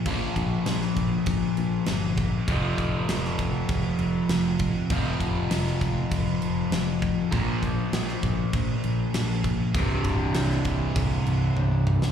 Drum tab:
CC |x-x-x-x-x-x-x-x-|x-x-x-x-x-x-x-x-|x-x-x-x-x-x-x-x-|x-x-x-x-x-x-x-x-|
SD |----oo------o---|----oo------o---|----oo------o---|----oo------o---|
T1 |----------------|----------------|----------------|----------------|
T2 |----------------|----------------|----------------|----------------|
BD |o-o---o-o-----o-|o-o---o-o-----o-|o-o---o-o-----o-|o-o---o-o-----o-|

CC |x-x-x-x-x-x-----|
SD |----oo---------o|
T1 |------------o---|
T2 |--------------o-|
BD |o-o---o-o-------|